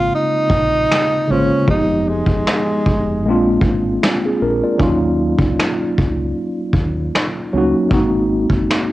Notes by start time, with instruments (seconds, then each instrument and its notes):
Already playing: tine electric piano C#3 G#3 A#3 C4 F4, tenor saxophone F4
0.15 tenor saxophone D#4
0.50 fingered electric bass A#1, kick
0.91 finger snap, snare
1.27 fingered electric bass G#1, tine electric piano C#3 G#3 A#3 C5, tenor saxophone C#4
1.32 tine electric piano F4
1.67 fingered electric bass F1, tine electric piano F3 G#3 B3, tenor saxophone D#4, kick
1.71 tine electric piano D#4 G4
2.09 tenor saxophone G#3
2.26 fingered electric bass F1, kick
2.47 finger snap, snare
2.86 fingered electric bass F1, kick
3.25 fingered electric bass A#1, tine electric piano G#3 A#3 C4 D4
3.30 tine electric piano F4
3.61 fingered electric bass G#1, kick
4.03 finger snap, snare
4.26 tine electric piano C4 G#4
4.42 fingered electric bass A#1, tine electric piano D4 A#4
4.64 tine electric piano F4 D5
4.78 fingered electric bass D#2, tine electric piano F#3 A#3 C#4 D#4, kick
4.83 tine electric piano F4
5.38 fingered electric bass C#2, kick
5.59 finger snap, snare
5.98 fingered electric bass C#2, kick
6.73 fingered electric bass D#2, kick
7.15 finger snap, snare
7.53 fingered electric bass C#2, tine electric piano F#3 A#3 C#4 D#4
7.58 tine electric piano F#4
7.89 fingered electric bass G#1, tine electric piano G#3 A#3 C4 D#4, kick
7.94 tine electric piano F#4
8.50 fingered electric bass F#1, kick
8.71 finger snap, snare